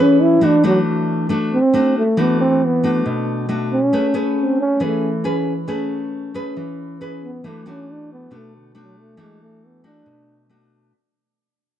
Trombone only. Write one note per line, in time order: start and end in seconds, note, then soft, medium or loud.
0.02 0.24 C#4 medium
0.22 0.48 E4 medium
0.46 0.66 D4 medium
0.67 0.79 F#3 medium
1.54 1.94 C4 medium
1.98 2.23 A3 medium
2.21 2.40 B3 medium
2.41 2.67 C4 medium
2.66 3.07 B3 medium
3.73 4.12 C#4 medium
4.17 4.33 A3 soft
4.41 4.60 C4 medium
4.61 4.87 C#4 medium
4.85 5.27 A3 medium
7.24 7.50 B3 medium
7.49 7.70 A3 medium
7.69 7.94 C#4 medium
7.92 8.11 D4 medium
8.13 8.38 B3 medium
8.36 8.55 A3 medium
8.57 8.73 D3 soft
8.80 9.01 F#3 medium
9.00 9.23 A3 medium
9.22 9.42 G#3 medium
9.42 9.68 A3 medium
9.67 9.86 B3 medium
9.87 10.47 D4 medium